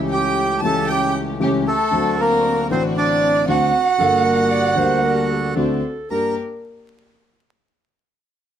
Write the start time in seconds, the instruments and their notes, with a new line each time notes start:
Already playing: grand piano C#2 C#3 E3 A3 C#4 G4, string section C#3 A3 C#4 G4
0.10 bandoneon G4 G5, violin G5
0.60 grand piano C#2 C#3 E3 A3, string section C#3 A3 C#4 G4, violin A5
0.64 grand piano C#4 G4, bandoneon A4 A5
0.88 bandoneon G4 G5, violin G5
1.40 grand piano C#2 C#3 E3 A3 C#4 G4, string section C#3 A3 C#4 G4
1.68 bandoneon A3 A4, violin A4
1.91 grand piano D2 D3 F#3 C4 F#4, string section C4 D4 F#4
2.19 bandoneon A#3 A#4, violin A#4
2.68 grand piano A1 A2 D3 A3 C4 F#4, string section C4 D4 F#4, bandoneon C4 C5, violin C5
2.97 bandoneon D4 D5, violin D5
3.48 grand piano D2 D3 A3 C4 F#4, string section C4 D4 F#4, bandoneon F#4 F#5, violin F#5
3.98 grand piano G1 G2 D3 G3 A#3 A#4, string section G3 A#3 D4, clarinet A4
4.25 clarinet A#4
4.51 clarinet D5
4.76 grand piano D2 D3 G3 A#3 A#4, string section G3 A#3 D4, clarinet C5
5.03 clarinet A#4
5.31 clarinet A4
5.56 grand piano D2 D3 A3 C4 F#4, string section C4 D4 F#4
6.11 grand piano G2 A#3 D4 G4, string section A#3 D4 G4, clarinet A#4, violin A#4, bandoneon A#5